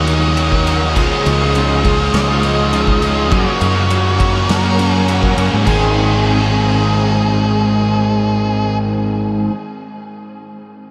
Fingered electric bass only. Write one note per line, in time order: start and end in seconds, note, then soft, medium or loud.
0.00 0.97 D#2 loud
0.97 1.09 C#2 loud
1.26 2.10 C#2 loud
2.14 3.32 C#2 loud
3.32 3.45 F#2 loud
3.61 4.45 F#2 loud
4.49 5.33 F#2 medium
5.37 5.50 F#2 medium
5.53 5.66 G#2 medium
5.67 9.48 G#1 medium